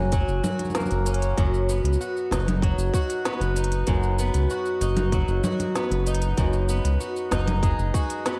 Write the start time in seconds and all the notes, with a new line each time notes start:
Already playing: F#1 F#2 F#3 A#3 C#4 F#4
0.12 F#3, kick, closed hi-hat, shaker
0.28 F#1, shaker
0.43 F#4, low conga, shaker
0.59 closed hi-hat, low conga, shaker
0.65 low conga, shaker
0.70 low conga, shaker
0.75 A#3, snare, closed hi-hat, low conga, shaker
0.80 low conga, shaker
0.86 low conga, shaker
0.91 F#1, closed hi-hat, shaker
1.06 C#4, closed hi-hat, shaker
1.14 closed hi-hat
1.22 closed hi-hat, shaker
1.38 F#1 F#2, kick, closed hi-hat, shaker
1.54 shaker
1.69 B3, shaker
1.84 C#2, closed hi-hat
1.93 shaker
2.01 F#4, shaker
2.17 shaker
2.31 F#1 D#4, kick, snare, closed hi-hat, shaker
2.48 closed hi-hat, low conga, shaker
2.62 F#3, kick, closed hi-hat
2.78 F#1, shaker
2.94 F#4, kick, shaker
3.10 closed hi-hat, shaker
3.25 B3, snare, closed hi-hat, shaker
3.40 F#1, closed hi-hat, shaker
3.56 D#4, closed hi-hat, shaker
3.64 closed hi-hat
3.72 closed hi-hat, shaker
3.87 F#1 F#2, kick, closed hi-hat, shaker
4.03 shaker
4.19 B3, shaker
4.34 C#2, closed hi-hat, shaker
4.50 F#4, shaker
4.66 shaker
4.81 F#1 D#4, closed hi-hat, shaker
4.97 closed hi-hat, low conga, shaker
5.12 F#3, kick, closed hi-hat, shaker
5.28 F#1, shaker
5.44 F#4, low conga, shaker
5.60 closed hi-hat, low conga, shaker
5.75 B3, snare, closed hi-hat, shaker
5.91 F#1, closed hi-hat, shaker
6.07 D#4, closed hi-hat, shaker
6.14 closed hi-hat
6.22 closed hi-hat, shaker
6.38 F#1 F#2, kick, closed hi-hat, shaker
6.53 shaker
6.69 B3, shaker
6.85 C#2, closed hi-hat, shaker
7.00 F#4, shaker
7.16 shaker
7.31 F#1 D#4, kick, snare, closed hi-hat, shaker
7.48 closed hi-hat, low conga, shaker
7.63 G#3, kick, closed hi-hat, shaker
7.79 F#1, shaker
7.94 F#4, kick, shaker
8.10 closed hi-hat, shaker
8.26 B3, snare, closed hi-hat, shaker